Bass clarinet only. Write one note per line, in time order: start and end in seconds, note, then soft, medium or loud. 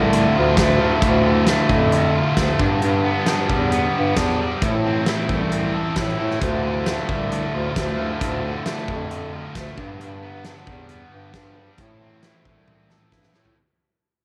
0.00 0.27 C2 medium
0.36 0.54 D2 medium
0.58 0.94 D2 medium
1.02 1.58 D2 medium
1.69 2.25 F2 medium
2.37 2.61 D2 medium
2.59 2.78 G2 medium
2.83 3.16 G2 medium
3.50 3.87 E2 medium
3.96 4.14 G2 loud
4.17 4.54 E2 medium
4.62 5.18 A2 medium
5.30 5.85 C2 medium
5.97 6.15 A2 medium
6.20 6.38 A2 medium
6.41 6.97 D2 loud
7.09 7.46 C2 medium
7.52 7.71 D2 medium
7.76 8.13 D2 medium
8.21 8.54 D2 medium
8.88 9.44 F2 medium
9.55 9.79 D2 medium
9.78 9.96 G2 medium
10.00 10.55 G2 loud
10.67 11.04 E2 medium
11.11 11.30 G2 medium
11.34 11.71 G2 loud
11.78 12.34 A2 medium
12.46 13.01 C2 medium
13.13 13.32 G2 medium
13.34 13.54 A2 medium